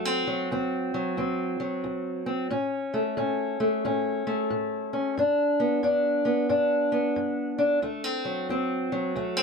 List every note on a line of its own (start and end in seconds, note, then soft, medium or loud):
0.00 0.46 D2 medium
0.00 0.26 F#3 medium
0.05 0.51 C4 medium
0.27 0.93 F#3 medium
0.51 1.13 D2 medium
0.51 1.17 C4 medium
0.94 1.59 F#3 medium
1.17 1.79 D2 medium
1.17 2.25 C4 medium
1.60 2.51 F#3 medium
1.84 2.46 D2 medium
2.26 2.48 C4 medium
2.50 3.12 A2 medium
2.50 3.16 C#4 medium
2.94 3.59 A3 medium
3.17 3.79 A2 medium
3.17 3.84 C#4 medium
3.60 4.26 A3 medium
3.85 4.46 A2 medium
3.85 4.92 C#4 medium
4.27 5.15 A3 medium
4.50 5.12 A2 medium
4.93 5.15 C#4 medium
5.17 5.79 G2 medium
5.17 5.84 D4 medium
5.60 6.24 B3 medium
5.83 6.45 G2 medium
5.83 6.49 D4 medium
6.25 6.91 B3 medium
6.49 7.11 G2 medium
6.49 7.57 D4 medium
6.92 7.80 B3 medium
7.16 7.78 G2 medium
7.58 7.80 D4 medium
7.82 8.44 D2 medium
7.82 8.04 A3 medium
8.04 8.49 C4 medium
8.25 8.91 F#3 medium
8.49 9.11 D2 medium
8.49 9.16 C4 medium
8.92 9.43 F#3 medium
9.16 9.43 D2 medium
9.16 9.37 A3 medium
9.37 9.43 C4 medium